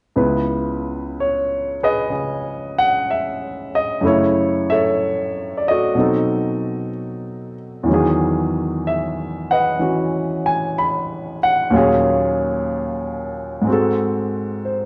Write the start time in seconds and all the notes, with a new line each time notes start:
0.16 C#2 C#3 B3 E4 B4
1.20 C#5
1.83 G#4 B4 D#5
2.09 C#3 C#4 G#4
2.78 F#5
3.11 E5
3.75 D#5
4.01 F#2 C#3 A3 E4
4.06 E4 A4 C#5
4.70 A4 C#5 E5
5.58 D5
5.68 F#4 A4 D#5
5.95 B2 F#3 C4 D#4
6.00 A4
7.83 E2 E3
7.88 D#3 F#3
7.94 G#4
8.87 E5
9.51 B4 D#5 F#5
9.79 E3 C#4 F#4
10.46 G#5
10.78 B5
11.43 F#5
11.71 D#2 A#2 F#3 C#4
11.75 F4 G#4 C#5 F5
13.61 G#2 G#3
13.67 C4 F#4
13.72 A4
14.65 C5